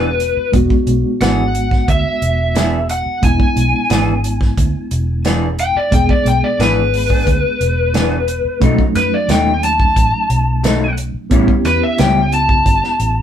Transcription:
Already playing: E1 G#3 B3 D4 F#4 B4
0.20 closed hi-hat
0.37 muted fingered electric bass stroke
0.52 E1 G#3 B3 D4 F#4, kick, closed hi-hat
0.70 kick
0.87 B1, closed hi-hat
1.21 G#1 E3 B3 D4 G#4 F#5, snare, closed hi-hat
1.55 closed hi-hat
1.71 kick, snare
1.88 D2 E5, kick, closed hi-hat
2.22 E1, closed hi-hat
2.55 E3 B3 D4 G#4, snare, closed hi-hat
2.89 F#5, closed hi-hat
3.06 muted fingered electric bass stroke
3.22 E1 G#3 B3 D4 E4 G#5, kick, closed hi-hat
3.40 kick
3.56 B1, closed hi-hat
3.90 G#1 E3 B3 D4 G#4, snare, closed hi-hat
4.24 closed hi-hat
4.41 kick, snare
4.57 D2, kick, closed hi-hat
4.91 E1, closed hi-hat
5.25 E3 B3 D4 G#4, snare, closed hi-hat
5.58 G5, closed hi-hat
5.76 D5, muted fingered electric bass stroke
5.91 E1 G#3 B3 D4 G#4 G5, kick, closed hi-hat
6.09 D5, kick
6.25 B1 G5, closed hi-hat
6.44 D5
6.59 G#1 E3 B3 D4 G#4 B4, snare, closed hi-hat
6.93 open hi-hat
7.10 B3 D4 G#4, kick
7.27 D2, kick, closed hi-hat
7.61 E1, closed hi-hat
7.94 E3 B3 D4 G#4, snare, closed hi-hat
8.28 closed hi-hat
8.45 muted fingered electric bass stroke
8.60 B1 B2 F#3 A3 C#4 D#4, kick, closed hi-hat
8.79 kick
8.95 F#2 B4, snare, closed hi-hat
9.14 D5
9.28 D#2 B2 F#3 A3 D#4 G5, snare, closed hi-hat
9.63 A5, closed hi-hat
9.80 kick
9.96 A1, kick, closed hi-hat
10.30 B1, closed hi-hat
10.63 B2 F#3 A3 D#4, snare, closed hi-hat
10.97 closed hi-hat
11.14 muted fingered electric bass stroke
11.30 A1 A2 G3 B3 C#4 E4 G4, kick, closed hi-hat
11.48 kick
11.65 E2 B4, snare, closed hi-hat
11.83 E5
11.98 C#2 A2 G3 C#4 E4 G5, snare, closed hi-hat
12.32 A5, closed hi-hat
12.49 kick
12.66 G1, kick, closed hi-hat
12.84 snare
12.99 A1, closed hi-hat

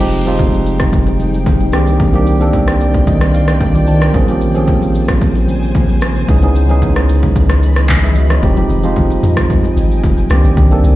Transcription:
Already playing: F1 D#4 G#4 G5
0.00 F3 G#3 C4 D#4 G4, high conga
0.13 shaker
0.26 F3 G3 C4 D#4 F4, high conga, shaker
0.33 G#3
0.39 kick, low conga, shaker
0.53 high conga, shaker
0.66 shaker
0.80 kick, cross-stick, shaker
0.93 kick, shaker
1.07 high conga, shaker
1.20 high conga, shaker
1.34 shaker
1.46 kick, low conga, shaker
1.60 high conga, shaker
1.72 C2 D#3 A#3 C4 D4 G4 D5 G5, cross-stick, shaker
1.87 high conga, shaker
2.00 kick, shaker
2.13 D#3 A#3 C4 D4 G4, high conga, shaker
2.27 shaker
2.40 D#3 A#3 C4 D4 A4, high conga, shaker
2.53 kick, low conga, shaker
2.67 cross-stick, high conga, shaker
2.80 D5, shaker
2.94 kick, shaker
3.07 D#5, kick, shaker
3.21 cross-stick, high conga, shaker
3.34 F5, high conga, shaker
3.48 cross-stick, shaker
3.61 D4 A#4 G5, kick, low conga, shaker
3.75 F4 D5, high conga, shaker
3.87 D#4 C5 A5, shaker
4.02 D4 A#4, cross-stick, high conga, shaker
4.14 A#1 C#3 F3 A#3 C4 C#4 G#4 C5 G#5, kick, shaker
4.28 F3 A#3 C4 C#4 G4, high conga, shaker
4.41 shaker
4.54 F3 A#3 C4 C#4 G#4, high conga, shaker
4.68 kick, low conga, shaker
4.82 high conga, shaker
4.95 shaker
5.08 kick, cross-stick, shaker
5.21 kick, shaker
5.35 high conga, shaker
5.48 high conga, shaker
5.63 shaker
5.75 kick, low conga, shaker
5.89 high conga, shaker
6.01 cross-stick, shaker
6.16 high conga, shaker
6.28 C#2 E3 B3 C#4 D#4 G#4 D#5 B5, kick, shaker
6.42 E3 B3 C#4 D#4 G#4, high conga, shaker
6.55 shaker
6.69 E3 B3 C#4 D#4 G#4, high conga, shaker
6.82 kick, low conga, shaker
6.96 cross-stick, high conga, shaker
7.09 shaker
7.22 kick, shaker
7.36 kick, shaker
7.50 cross-stick, high conga, shaker
7.63 high conga, shaker
7.76 cross-stick, shaker
7.89 B4 G#5, kick, clap, low conga, shaker
8.03 G#4 E5, high conga, shaker
8.15 F#4 D#5, shaker
8.30 E4 C#5, cross-stick, high conga, shaker
8.42 F1 F3 G#3 C4 D#4 G4 G5 G#5, kick, shaker
8.56 F3 G#3 C4 D#4 G4, high conga, shaker
8.70 F1, shaker
8.83 F3 G#3 C4 D#4 F4, high conga, shaker
8.96 kick, low conga, shaker
9.10 high conga, shaker
9.23 F2, shaker
9.37 kick, cross-stick, shaker
9.50 kick, shaker
9.64 high conga, shaker
9.77 G#1, high conga, shaker
9.91 shaker
10.04 F1, kick, low conga, shaker
10.17 high conga, shaker
10.30 C2 D#3 A#3 C4 D4 G4 D5 A#5, cross-stick, shaker
10.44 A#1, high conga, shaker
10.57 C2, kick, shaker
10.70 D#3 A#3 C4 D4 A4, high conga, shaker
10.84 C2, shaker

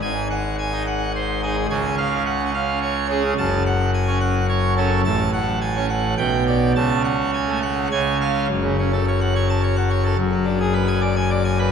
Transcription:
0.02 G#1 G#2 G#5
0.30 F#5
0.59 G#5
0.73 D#4
0.87 F#5
1.16 C5
1.43 D#4 G#4
1.70 C#2 C#3 G#5
1.98 F5
2.26 F#5
2.40 C#4
2.54 F5
2.82 C#5
3.10 C#4 G#4
3.38 F#1 F#2 A5
3.66 F#5
3.94 G#5
4.08 C#4
4.21 F#5
4.49 C#5
4.77 C#4 A4
5.05 A1 A2 A5
5.34 F#5
5.62 G#5
5.76 C#4
5.90 F#5
6.18 B1 B2 G5
6.47 D5
6.76 C#2 C#3 A5
7.05 F#5
7.34 G#5
7.48 A3
7.63 F#5
7.92 C#2 C#3 G#5
8.21 F5
8.49 F#1 F#2
8.64 C#3
8.79 C#4
8.93 A4
9.08 C#5
9.21 F#5
9.35 C#5
9.49 A5
9.63 C#5
9.77 F#5
9.90 C#5
10.04 A4
10.17 F#1 F#2
10.32 F#3
10.45 D4
10.60 G#4
10.74 B4
10.88 G#5
11.02 D5
11.16 G#5
11.30 D5
11.45 G#5
11.59 B4

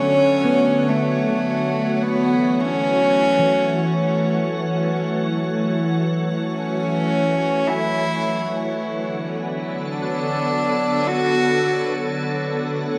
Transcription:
Already playing: D3 F#3 A3 C#4 F#4 C#5
0.44 B3
0.89 A3
2.02 E3 B3
2.60 C#4
3.39 E3
6.54 C#4
7.67 E4 G#5
8.79 D3
9.07 B3
9.55 A4
9.94 D4
11.07 F#4
12.31 F#4
12.64 A3 C#5

